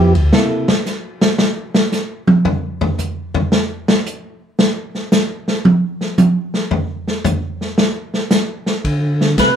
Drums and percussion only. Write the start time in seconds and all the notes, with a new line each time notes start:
0.15 ride
0.33 snare
0.68 snare
0.86 snare, hi-hat pedal
1.21 snare
1.38 snare
1.74 snare
1.92 snare, hi-hat pedal
2.27 high tom
2.45 floor tom
2.81 floor tom
2.98 floor tom, hi-hat pedal
3.34 floor tom
3.52 snare
3.88 snare
4.06 hi-hat pedal
4.59 snare
4.95 snare
5.12 snare, hi-hat pedal
5.48 snare
5.65 high tom
6.01 snare
6.18 hi-hat pedal, high tom
6.54 snare
6.71 floor tom
7.08 snare
7.24 floor tom, hi-hat pedal
7.61 snare
7.78 snare
8.14 snare
8.30 snare, hi-hat pedal
8.66 snare
8.85 kick, ride
9.21 snare
9.38 kick, snare, hi-hat pedal, ride